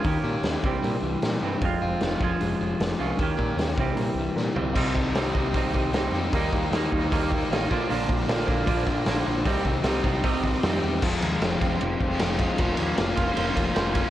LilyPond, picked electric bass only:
\new Staff \with { instrumentName = "Picked electric bass" } { \clef bass \time 4/4 \key c \phrygian \tempo 4 = 153 ees,8 bes,8 ees,8 c,8 bes,8 c,8 bes,8 g,8 | f,,8 f,,8 f,,8 f,,8 f,,8 f,,8 f,,8 c,8 | ees,8 bes,8 ees,8 c,8 bes,8 c,8 bes,8 c,8 | c,8 c,8 c,8 c,8 c,8 c,8 c,8 f,8 |
ees,8 ees,8 ees,8 ees,8 ees,4 a,,8 bes,,8 | bes,,8 bes,,8 bes,,8 bes,,8 bes,,8 bes,,8 bes,,8 bes,,8 | c,8 c,8 c,8 c,8 c,4 f,8 e,8 | f,,8 ees,8 f,,8 f,,8 f,,8 f,,8 f,,4 |
f,,8 ees,8 f,,8 f,,8 f,,8 f,,8 f,,4 | }